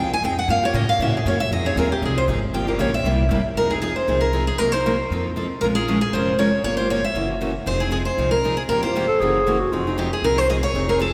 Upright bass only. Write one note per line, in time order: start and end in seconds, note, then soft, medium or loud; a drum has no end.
0.00 0.10 D#2 medium
0.11 muted upright bass stroke soft
0.22 0.47 F2 medium
0.48 0.73 G2 medium
0.74 0.99 A2 medium
0.99 1.24 A#2 medium
1.25 1.50 F#2 medium
1.51 1.75 F2 medium
1.76 2.01 D#2 loud
2.02 2.27 C2 medium
2.28 2.53 G#1 medium
2.53 2.78 G1 medium
2.78 3.03 A#1 medium
3.04 3.28 C2 loud
3.29 3.43 G1 loud
3.43 muted upright bass stroke soft
3.55 3.97 F1 medium
4.08 4.49 C2 medium
4.59 5.00 C2 medium
5.10 5.51 F2 medium
5.61 6.02 A#1 medium
6.13 6.54 F1 medium
6.64 7.05 G1 medium
7.14 7.56 F#1 medium
7.66 8.07 F1 medium
8.18 8.59 C2 medium
8.69 9.10 G1 medium
9.20 9.61 F#1 loud
9.72 10.13 F1 medium
10.22 10.63 C2 medium
10.74 11.13 F1 medium